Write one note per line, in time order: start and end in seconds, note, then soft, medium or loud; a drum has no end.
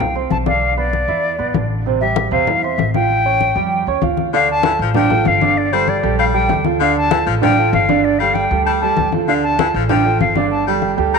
0.00 0.28 C2 medium
0.00 0.13 F3 medium
0.00 0.14 F4 medium
0.00 0.14 F5 medium
0.00 0.14 G5 medium
0.00 high conga soft
0.00 low conga medium
0.15 0.41 C4 medium
0.15 0.41 C5 medium
0.15 0.41 C6 medium
0.15 high conga soft
0.30 1.03 B1 medium
0.30 0.37 A5 loud
0.30 high conga medium
0.46 0.72 D3 medium
0.46 0.72 D4 medium
0.46 0.72 D5 medium
0.46 0.76 F5 medium
0.46 high conga medium
0.62 high conga soft
0.77 1.03 B3 medium
0.77 1.03 B4 medium
0.77 1.67 D5 loud
0.77 1.03 B5 medium
0.77 high conga soft
0.93 high conga medium
1.08 1.37 E2 medium
1.08 1.34 E3 medium
1.08 1.34 E4 medium
1.08 1.34 E5 medium
1.08 high conga soft
1.24 high conga soft
1.39 1.54 B1 medium
1.39 1.52 B3 medium
1.39 1.52 B4 medium
1.39 1.52 B5 medium
1.39 high conga soft
1.54 2.27 A1 medium
1.54 1.81 D3 medium
1.54 1.81 D4 medium
1.54 1.81 D5 medium
1.54 high conga medium
1.86 1.99 C3 medium
1.86 1.99 C4 medium
1.86 1.99 C5 medium
1.86 high conga soft
2.01 2.27 G3 medium
2.01 2.27 G4 medium
2.01 2.30 E5 loud
2.01 2.28 G5 medium
2.01 high conga soft
2.16 high conga loud
2.31 2.75 E2 medium
2.31 2.45 C3 loud
2.31 2.45 C4 medium
2.31 2.45 C5 medium
2.31 2.64 F5 medium
2.31 high conga soft
2.47 2.60 E3 medium
2.47 2.60 E4 medium
2.47 2.61 E5 medium
2.47 high conga soft
2.47 low conga medium
2.63 2.89 C4 medium
2.63 2.89 C5 medium
2.63 2.93 E5 loud
2.63 2.89 C6 medium
2.63 high conga soft
2.78 3.50 A1 medium
2.78 high conga medium
2.94 3.20 F3 medium
2.94 3.20 F4 medium
2.94 3.20 F5 medium
2.94 3.98 G5 loud
2.94 high conga medium
3.10 high conga soft
3.25 3.51 C#4 medium
3.25 3.51 C#5 medium
3.25 3.51 C#6 medium
3.25 high conga soft
3.41 high conga medium
3.55 3.85 F2 medium
3.55 3.82 G3 medium
3.55 3.82 G4 medium
3.55 3.82 G5 medium
3.55 high conga soft
3.72 high conga soft
3.87 4.01 D#2 medium
3.87 4.00 C#4 medium
3.87 4.00 C#5 medium
3.87 4.00 C#6 medium
3.87 high conga soft
4.02 4.74 D2 medium
4.02 4.28 F3 medium
4.02 4.28 F4 medium
4.02 4.28 F5 medium
4.02 high conga medium
4.17 high conga medium
4.33 4.50 D3 medium
4.33 4.59 D3 medium
4.33 4.59 D4 medium
4.33 4.59 D5 medium
4.33 4.48 F5 loud
4.33 high conga soft
4.48 4.79 A5 loud
4.48 high conga soft
4.63 4.73 E3 medium
4.63 4.89 F3 medium
4.63 4.89 F4 medium
4.63 4.90 A4 medium
4.63 high conga loud
4.79 5.22 A1 medium
4.79 4.89 F3 medium
4.79 high conga soft
4.94 5.08 D3 medium
4.94 5.42 F3 medium
4.94 5.08 D4 medium
4.94 5.08 D5 medium
4.94 5.29 G5 loud
4.94 high conga soft
4.94 low conga medium
5.10 5.36 F3 medium
5.10 5.36 F4 medium
5.10 5.36 A4 medium
5.10 high conga soft
5.10 low conga medium
5.25 5.98 G1 loud
5.25 5.59 F5 loud
5.25 high conga medium
5.41 5.67 D3 medium
5.41 5.67 D4 medium
5.41 5.67 D5 loud
5.41 high conga medium
5.57 5.74 D5 loud
5.57 high conga soft
5.73 5.97 G3 medium
5.73 5.98 G3 medium
5.73 5.98 G4 medium
5.73 5.98 A4 medium
5.73 5.90 C5 loud
5.73 high conga soft
5.88 6.18 D5 loud
5.88 high conga medium
6.03 6.46 A#1 medium
6.03 6.29 G3 medium
6.03 6.29 G4 medium
6.03 6.29 A4 medium
6.03 high conga soft
6.19 6.54 G3 medium
6.19 6.25 F5 loud
6.19 high conga soft
6.34 6.60 G3 medium
6.34 6.60 G4 medium
6.34 6.60 A4 medium
6.34 6.63 G5 loud
6.34 high conga soft
6.49 7.21 D2 loud
6.49 high conga medium
6.65 6.78 F3 medium
6.65 6.78 F4 medium
6.65 6.78 A4 medium
6.65 high conga medium
6.80 6.96 D3 loud
6.80 7.06 D3 medium
6.80 7.06 D4 medium
6.80 7.06 D5 medium
6.80 6.95 F5 loud
6.80 high conga soft
6.96 7.25 A5 loud
6.96 high conga soft
7.11 7.19 E3 medium
7.11 7.37 F3 medium
7.11 7.37 F4 medium
7.11 7.37 A4 medium
7.11 high conga loud
7.26 7.70 A1 medium
7.26 7.35 F3 medium
7.26 high conga soft
7.41 7.54 D3 medium
7.41 7.89 F3 medium
7.41 7.55 D4 medium
7.41 7.55 D5 medium
7.41 7.71 G5 loud
7.41 high conga soft
7.41 low conga medium
7.58 7.83 F3 medium
7.58 7.83 F4 medium
7.58 7.84 A4 medium
7.58 high conga soft
7.73 8.45 G1 loud
7.73 8.06 F5 loud
7.73 high conga medium
7.89 8.14 D3 loud
7.89 8.15 D4 medium
7.89 8.15 D5 medium
7.89 high conga medium
8.04 8.21 D5 medium
8.04 high conga soft
8.19 8.44 G3 medium
8.19 8.46 G3 medium
8.19 8.46 G4 medium
8.19 8.46 A4 medium
8.19 8.36 F5 loud
8.19 high conga soft
8.34 8.65 G5 loud
8.34 high conga medium
8.51 8.94 D2 medium
8.51 8.77 G3 medium
8.51 8.77 G4 medium
8.51 8.77 A4 medium
8.51 high conga soft
8.65 9.02 G3 medium
8.65 8.71 A5 loud
8.65 high conga soft
8.81 9.07 G3 medium
8.81 9.07 G4 medium
8.81 9.08 A4 medium
8.81 9.10 A5 loud
8.81 high conga soft
8.97 9.69 D2 medium
8.97 high conga medium
9.12 9.26 F3 medium
9.12 9.26 F4 medium
9.12 9.26 A4 medium
9.12 high conga medium
9.28 9.53 D3 medium
9.28 9.44 D3 medium
9.28 9.54 D4 medium
9.28 9.54 D5 medium
9.28 9.34 F5 loud
9.28 high conga soft
9.43 9.72 A5 loud
9.43 high conga soft
9.59 9.67 E3 medium
9.59 9.84 F3 medium
9.59 9.84 F4 medium
9.59 9.84 A4 medium
9.59 high conga loud
9.74 10.17 A1 medium
9.74 9.83 F3 medium
9.74 high conga soft
9.89 10.02 D3 medium
9.89 10.36 F3 medium
9.89 10.02 D4 medium
9.89 10.03 D5 medium
9.89 10.18 G5 loud
9.89 high conga soft
9.89 low conga medium
10.05 10.31 F3 medium
10.05 10.30 F4 medium
10.05 10.31 A4 medium
10.05 high conga soft
10.21 10.92 G1 medium
10.21 10.49 F5 medium
10.21 high conga medium
10.36 10.61 D3 medium
10.36 10.62 D4 medium
10.36 10.62 D5 loud
10.36 high conga medium
10.51 10.65 A5 medium
10.51 high conga soft
10.67 10.91 G3 medium
10.67 10.93 G3 medium
10.67 10.93 G4 medium
10.67 10.93 A4 medium
10.67 high conga soft
10.82 high conga medium
10.97 11.19 D2 loud
10.97 11.19 G3 medium
10.97 11.19 G4 medium
10.97 11.19 A4 medium
10.97 high conga soft
11.13 11.19 G3 medium
11.13 11.19 A#5 loud
11.13 high conga soft